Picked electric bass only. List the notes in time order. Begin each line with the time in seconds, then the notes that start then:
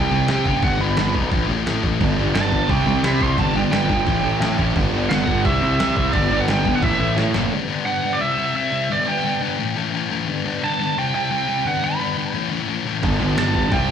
0.11 C2
0.29 C3
0.45 F#1
0.63 G1
0.80 G1
0.98 G1
1.15 B1
1.32 A1
1.50 A1
1.67 A2
1.84 A1
2.01 G1
2.18 G1
2.35 G1
2.52 G1
2.69 C2
2.87 C2
3.04 C3
3.21 C2
3.38 G1
3.54 G1
3.72 G1
3.89 G1
4.07 A1
4.23 A1
4.40 A2
4.59 A1
4.76 G1
4.93 G1
5.10 G1
5.27 G1
5.45 C2
5.62 C2
5.80 C3
5.97 C2
6.14 G1
6.32 G1
6.48 G1
6.66 G1
6.83 A1
6.99 A1
7.17 A2
7.34 F#1
13.03 G1
13.21 G1
13.37 G1
13.55 G1
13.72 C2